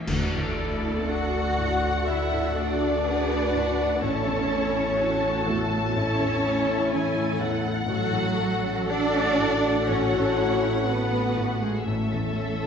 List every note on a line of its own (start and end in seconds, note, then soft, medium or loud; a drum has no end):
0.00 0.11 A2 soft
0.00 0.12 E3 soft
0.00 0.11 C#4 soft
0.00 0.10 E4 soft
0.00 0.12 E4 soft
0.00 1.08 A4 soft
0.06 2.04 D2 medium
0.06 3.98 D2 medium
0.06 3.97 D3 medium
0.06 1.05 A3 medium
0.06 0.54 F#4 medium
0.06 3.99 F#4 medium
0.06 2.04 A4 medium
0.06 1.05 A4 medium
0.06 1.10 A4 medium
0.06 1.05 D5 medium
0.06 3.99 D5 medium
0.06 concert bass drum medium
0.06 crash medium
0.32 0.74 A2 soft
0.32 3.04 A3 soft
0.57 0.99 A3 soft
0.57 2.80 D4 soft
0.57 1.09 E4 medium
0.82 1.24 D4 medium
0.82 2.57 F#4 soft
1.08 1.56 D4 medium
1.08 1.49 F#4 medium
1.08 2.08 F#4 medium
1.08 2.32 A4 medium
1.08 2.08 F#5 medium
1.08 2.09 F#5 medium
1.08 3.05 F#5 medium
1.33 1.73 A3 soft
1.33 4.06 D5 medium
1.57 1.98 A2 soft
1.57 2.07 D4 medium
1.57 2.07 F#5 medium
1.83 2.23 A3 soft
2.06 3.98 D2 medium
2.06 2.57 E4 medium
2.06 3.05 F#4 medium
2.06 3.03 A4 medium
2.06 2.56 E5 medium
2.06 2.57 E5 medium
2.06 4.06 F#5 medium
2.32 2.71 A2 soft
2.32 4.99 A4 soft
2.55 2.95 A3 medium
2.55 3.99 D4 medium
2.55 4.06 F#4 medium
2.55 4.02 D5 medium
2.81 3.20 D4 soft
2.81 3.28 D4 soft
3.05 3.53 A3 medium
3.05 3.44 F#4 medium
3.05 3.53 G#4 medium
3.05 4.00 B4 medium
3.05 4.00 F#5 medium
3.29 3.69 A3 soft
3.29 3.77 D4 soft
3.53 3.92 A2 soft
3.53 7.44 A3 medium
3.53 4.01 F#4 medium
3.78 4.02 A3 soft
3.78 4.06 D4 medium
4.00 5.92 A1 medium
4.00 7.85 A1 medium
4.00 7.89 A2 medium
4.00 5.44 C#4 medium
4.00 4.48 E4 medium
4.00 7.73 E4 medium
4.00 4.95 A4 medium
4.00 5.49 C#5 medium
4.00 5.44 C#5 medium
4.00 7.73 C#5 medium
4.00 4.99 A5 medium
4.25 4.65 E2 soft
4.25 6.93 E3 medium
4.49 4.90 A3 medium
4.49 4.98 E4 medium
4.75 5.14 C#4 medium
4.75 6.44 E4 medium
4.96 5.38 E4 medium
4.96 5.95 F#4 medium
4.96 5.93 A4 medium
4.96 6.20 A4 medium
5.01 6.89 A5 medium
5.23 5.62 A3 medium
5.23 9.15 C#6 medium
5.46 5.86 E2 medium
5.46 5.94 A3 medium
5.46 5.95 A4 medium
5.46 5.96 A4 medium
5.46 5.96 E5 medium
5.71 6.10 A3 medium
5.95 7.84 A1 medium
5.95 7.40 C#4 medium
5.95 7.88 E4 medium
5.95 6.43 A4 medium
5.95 7.40 C#5 medium
5.95 7.38 C#5 medium
5.95 7.94 E5 medium
6.19 6.58 E2 medium
6.19 8.89 A4 medium
6.43 6.83 A3 medium
6.43 7.93 E4 medium
6.43 6.91 A4 medium
6.67 7.06 C#4 medium
6.90 7.30 E4 medium
6.90 7.89 A4 medium
6.90 7.40 G#5 medium
6.94 7.41 E3 medium
7.15 7.54 A3 medium
7.38 7.78 E2 medium
7.38 7.93 E3 medium
7.38 8.88 F#5 medium
7.62 7.88 A3 medium
7.86 9.82 A1 medium
7.86 11.83 A1 medium
7.86 8.85 F#3 loud
7.86 8.85 F#4 medium
7.86 8.92 F#4 loud
7.90 11.80 A2 medium
7.90 8.38 F#4 medium
7.90 11.84 F#4 loud
7.90 8.38 A4 medium
7.90 11.83 A4 medium
8.11 8.52 A2 medium
8.11 10.86 A3 medium
8.37 8.78 A3 medium
8.37 9.86 A4 medium
8.63 9.04 C#4 medium
8.63 10.36 F#4 medium
8.89 9.87 D4 loud
8.89 9.28 F#4 medium
8.89 10.11 A4 medium
8.89 9.88 D5 loud
8.89 11.83 F#5 medium
9.14 9.53 A3 medium
9.38 9.77 A2 medium
9.38 9.86 F#5 medium
9.64 10.03 A3 medium
9.87 11.83 A1 medium
9.87 10.87 C#4 medium
9.87 10.85 F#4 medium
9.87 10.36 A4 medium
9.87 10.87 C#5 medium
9.87 11.90 F#5 medium
10.12 10.52 A2 medium
10.12 12.67 A4 medium
10.37 10.77 A3 medium
10.37 10.87 E4 medium
10.37 11.91 F#4 medium
10.62 11.11 C#4 medium
10.62 11.02 C#4 medium
10.86 11.35 A3 medium
10.86 11.61 B3 medium
10.86 11.87 F#4 medium
10.86 11.27 F#4 medium
10.86 11.60 B4 medium
10.86 11.62 B4 medium
11.12 11.52 A3 medium
11.12 11.60 C#4 medium
11.35 11.76 A2 soft
11.35 12.67 A3 soft
11.61 11.87 G#3 medium
11.61 11.86 A3 soft
11.61 12.37 C#4 soft
11.61 11.87 G#4 medium
11.61 11.86 G#4 medium
11.85 12.67 A1 medium
11.85 12.67 A2 medium
11.85 12.67 A3 medium
11.85 12.67 C#4 medium
11.85 12.67 E4 medium
11.85 12.67 A4 medium
11.85 12.67 C#5 medium
11.85 12.67 E5 medium
12.12 12.52 E2 soft
12.12 12.67 E3 soft
12.36 12.67 A3 soft
12.36 12.67 C#4 soft
12.62 12.67 C#4 soft
12.62 12.67 E4 soft